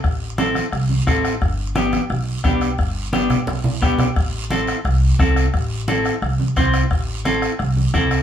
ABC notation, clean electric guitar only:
X:1
M:4/4
L:1/8
Q:1/4=175
K:Am
V:1 name="Clean electric guitar"
z2 [CEA] z3 [CEA] z | z2 [B,DG] z3 [B,DG] z | z2 [B,DG] z3 [B,DG] z | z2 [CEA] z3 [CEA] z |
z2 [CEA] z3 [CEc] z | z2 [CEA] z3 [CEA] z |]